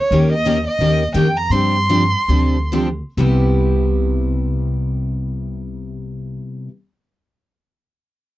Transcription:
0.00 violin C#5
0.11 upright bass D#2, steel-string acoustic guitar D#3 A#3 C#4 G4 A#4
0.33 violin D#5
0.45 steel-string acoustic guitar D#3 A#3 C#4 G4 A#4
0.68 violin D#5
0.79 upright bass D#2, steel-string acoustic guitar D#3 A#3 C#4 G4 A#4
1.14 upright bass F2, steel-string acoustic guitar D#3 A#3 C#4 G4 A#4, violin G5
1.37 violin A#5
1.50 upright bass G2, steel-string acoustic guitar C3 F3 C4 D4 G4, violin C6
1.89 steel-string acoustic guitar C3 F3 C4 D4 G4
2.28 upright bass D2, steel-string acoustic guitar C3 F3 C4 D4 G4
2.72 steel-string acoustic guitar C3 F3 C4 D4 G4
3.17 upright bass C2, steel-string acoustic guitar C3 G3 B3 E4 G4

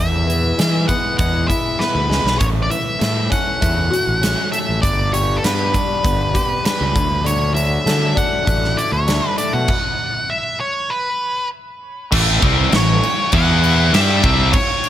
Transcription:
Already playing: fingered electric bass E2, steel-string acoustic guitar E2 E4, lead electric guitar E5
0.27 steel-string acoustic guitar E3, closed hi-hat
0.58 fingered electric bass E3, steel-string acoustic guitar G#3, snare, closed hi-hat
0.88 steel-string acoustic guitar B3, lead electric guitar F#5, kick, closed hi-hat
1.18 fingered electric bass E2, steel-string acoustic guitar G#3, lead electric guitar F#5, kick, closed hi-hat
1.48 steel-string acoustic guitar E4, lead electric guitar E5, kick, closed hi-hat
1.79 steel-string acoustic guitar B3, lead electric guitar B4, snare
1.95 fingered electric bass D2
2.09 fingered electric bass C#2, steel-string acoustic guitar G#3, snare
2.24 fingered electric bass B1, snare
2.39 fingered electric bass A1, steel-string acoustic guitar A2, lead electric guitar C#5, kick, closed hi-hat
2.63 lead electric guitar D5
2.70 steel-string acoustic guitar E3, lead electric guitar E5, closed hi-hat
3.00 fingered electric bass A2, steel-string acoustic guitar A3, snare, closed hi-hat
3.30 steel-string acoustic guitar C#4, lead electric guitar F#5, kick, closed hi-hat
3.61 fingered electric bass E2, steel-string acoustic guitar A3, kick, closed hi-hat
3.90 steel-string acoustic guitar F#4, closed hi-hat
4.07 fingered electric bass A1
4.21 steel-string acoustic guitar C#4, snare, closed hi-hat
4.52 steel-string acoustic guitar A3, lead electric guitar E5, closed hi-hat
4.69 fingered electric bass A1
4.82 fingered electric bass G1, steel-string acoustic guitar G2, lead electric guitar D5, kick, closed hi-hat
5.13 steel-string acoustic guitar G3, lead electric guitar C#5, closed hi-hat
5.37 lead electric guitar A4
5.43 fingered electric bass G2, steel-string acoustic guitar B3, lead electric guitar B4, snare, closed hi-hat
5.73 steel-string acoustic guitar D4, kick, closed hi-hat
6.03 fingered electric bass G1, steel-string acoustic guitar B3, kick, closed hi-hat
6.34 steel-string acoustic guitar G4, kick, closed hi-hat
6.64 steel-string acoustic guitar D4, lead electric guitar B4, snare, closed hi-hat
6.81 fingered electric bass C#2
6.94 fingered electric bass D2, steel-string acoustic guitar D3, kick, closed hi-hat
7.24 steel-string acoustic guitar D3, lead electric guitar C#5, closed hi-hat
7.54 steel-string acoustic guitar F#3, lead electric guitar E5, closed hi-hat
7.86 fingered electric bass D3, steel-string acoustic guitar A3, snare, closed hi-hat
8.15 steel-string acoustic guitar D4, lead electric guitar F#5, kick, closed hi-hat
8.46 fingered electric bass A1, steel-string acoustic guitar A3, kick, closed hi-hat
8.64 snare
8.77 steel-string acoustic guitar E4, lead electric guitar D5, closed hi-hat
8.92 fingered electric bass D2, lead electric guitar C#5
9.07 steel-string acoustic guitar D4, snare, closed hi-hat
9.38 steel-string acoustic guitar A3, lead electric guitar D5, closed hi-hat
9.53 fingered electric bass B2, lead electric guitar F#5
9.68 kick, crash
10.30 lead electric guitar E5
10.60 lead electric guitar C#5
10.90 lead electric guitar B4
12.12 fingered electric bass A1, distorted electric guitar A2 E3 A3, kick, crash
12.43 fingered electric bass C2, distorted electric guitar C3 G3 C4, kick, crash
12.72 fingered electric bass A1, distorted electric guitar A2 E3, lead electric guitar C#5, snare, crash
13.03 crash
13.32 fingered electric bass E2, distorted electric guitar E3 B3 E4, lead electric guitar F#5, kick, crash
13.64 crash
13.93 fingered electric bass G2, distorted electric guitar G3 D4 G4, lead electric guitar E5, snare, crash
14.23 fingered electric bass C2, distorted electric guitar C3 G3 C4, kick, crash
14.53 lead electric guitar C#5, kick, crash
14.84 crash

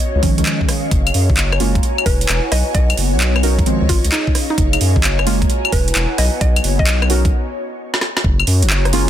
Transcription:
Already playing: analog synth pad C#5 D#5, ambient pad C#5
0.00 analog synth pad C#4, closed hi-hat
0.15 sub bass C#2
0.23 sub bass G#1, synth stab D#3 F3 G#3 C#4, analog synth pad G#4, kick, open hi-hat
0.38 sub bass C#2, synth stab D#3 F3 G#3 C#4, closed hi-hat
0.42 analog synth pad F5, clap, closed hi-hat
0.61 kick
0.69 cross-stick, open hi-hat
0.91 sub bass F#1, analog synth pad F#4, ambient pad C#5, kick, closed hi-hat
1.07 analog synth pad C#5 G#5, closed hi-hat, claves
1.14 sub bass F#2, open hi-hat
1.30 sub bass F#1, kick
1.34 analog synth pad A#5, clap, closed hi-hat
1.52 cross-stick, claves
1.60 synth stab G#3 A#3 C#4 F4, open hi-hat
1.75 kick, closed hi-hat
1.83 analog synth pad E4, closed hi-hat
1.95 analog synth pad B4, claves
2.06 sub bass E1, synth pluck B4, kick, open hi-hat
2.17 analog synth pad F#5
2.21 closed hi-hat
2.29 sub bass E1, clap, closed hi-hat
2.52 sub bass B1, analog synth pad B3, synth pluck D#5, cross-stick, open hi-hat
2.66 analog synth pad F#4
2.75 sub bass B1, synth pluck D#5, kick, closed hi-hat
2.90 closed hi-hat, claves
2.97 sub bass F#1, analog synth pad D#5, open hi-hat
3.05 analog synth pad C#5
3.13 sub bass B1
3.20 clap, closed hi-hat
3.36 cross-stick, claves
3.43 synth stab C#4 D#4 F#4 A#4, open hi-hat
3.59 kick, closed hi-hat
3.66 synth stab D#3 F3 G#3 C4, analog synth pad C#4, closed hi-hat
3.82 sub bass C#2
3.88 sub bass G#1, synth pluck F4, analog synth pad G#4, kick, open hi-hat
4.04 sub bass C#2, closed hi-hat
4.09 synth pluck D#4, analog synth pad F5, clap, closed hi-hat
4.27 kick
4.35 cross-stick, open hi-hat
4.50 synth pluck D#4
4.58 sub bass F#1, analog synth pad F#4, kick, closed hi-hat
4.65 analog synth pad C#5 G#5
4.73 closed hi-hat, claves
4.81 sub bass F#2, open hi-hat
4.96 sub bass F#1, kick
5.01 analog synth pad A#5, clap, closed hi-hat
5.19 cross-stick, claves
5.27 synth stab G#3 A#3 C#4 F4, open hi-hat
5.42 kick, closed hi-hat
5.50 analog synth pad E4, closed hi-hat
5.55 analog synth pad B4
5.65 claves
5.72 sub bass E1, synth pluck B4, analog synth pad F#5, kick, open hi-hat
5.88 closed hi-hat
5.95 sub bass E1, clap, closed hi-hat
6.18 sub bass B1, analog synth pad B3, synth pluck D#5, cross-stick, open hi-hat
6.25 analog synth pad F#4
6.30 analog synth pad C#5
6.41 sub bass B1, synth pluck D#5, kick, closed hi-hat
6.56 closed hi-hat, claves
6.61 sub bass F#1, analog synth pad D#5, open hi-hat
6.79 sub bass B1, synth pluck D#5, kick
6.87 clap, closed hi-hat
7.02 cross-stick, claves
7.10 synth stab C#4 D#4 F#4 A#4, open hi-hat
7.25 kick, closed hi-hat
7.94 snare
8.01 snare
8.17 snare
8.24 sub bass F#1, analog synth pad F#4, ambient pad A#5, kick
8.40 claves
8.45 sub bass F#2, analog synth pad C#5, open hi-hat
8.62 sub bass F#1, closed hi-hat
8.67 analog synth pad G#5 A#5, clap
8.85 cross-stick, closed hi-hat
8.93 synth stab G#3 A#3 C#4 F4, open hi-hat

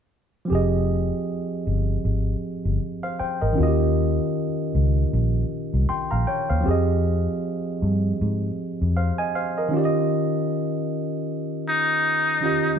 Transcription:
0.45 tine electric piano F3 C4
0.50 fingered electric bass F1, tine electric piano G4 G#4
0.55 tine electric piano D#5
1.67 fingered electric bass G1
2.05 fingered electric bass G#1
2.65 fingered electric bass G1
3.03 tine electric piano C5 F5
3.19 tine electric piano C5 G5, muted fingered electric bass stroke
3.42 fingered electric bass G#1, tine electric piano A#4 D#5
3.53 tine electric piano D#3 C#4
3.58 fingered electric bass D#2, tine electric piano F4 F#4
3.63 tine electric piano G4 D#5
4.75 fingered electric bass C#2
5.13 fingered electric bass A#1
5.74 fingered electric bass C2
5.89 tine electric piano G5 C6, muted fingered electric bass stroke
6.11 fingered electric bass A#1, tine electric piano F5 A#5
6.27 tine electric piano C#5 G5
6.50 fingered electric bass D#2, tine electric piano C5 F5
6.61 tine electric piano F3 C4
6.66 fingered electric bass F2, tine electric piano G4 G#4
6.71 tine electric piano D#5
7.82 fingered electric bass G2
8.21 fingered electric bass G#2
8.82 fingered electric bass F2
8.97 tine electric piano C5 F5
9.18 tine electric piano D#5 G#5
9.35 tine electric piano C5 F5
9.58 tine electric piano A#4 D#5
9.69 tine electric piano D#3 C#4
9.74 tine electric piano F4 G4
9.78 tine electric piano D5
9.85 tine electric piano D#5
11.68 muted trumpet D#4
12.41 tine electric piano D#3 C#4 F4 G4
12.46 tine electric piano D#5

